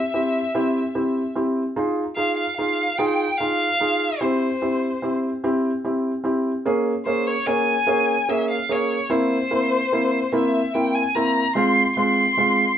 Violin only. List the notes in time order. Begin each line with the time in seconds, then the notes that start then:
Already playing: E5
2.16 F5
2.37 F5
2.57 F5
2.98 G5
3.38 F5
4.20 C5
7.06 C5
7.28 C#5
7.47 G#5
8.30 E5
8.51 F5
8.72 C#5
9.11 C5
10.34 E5
10.74 G5
10.95 G#5
11.15 A#5
11.56 C6
11.96 C6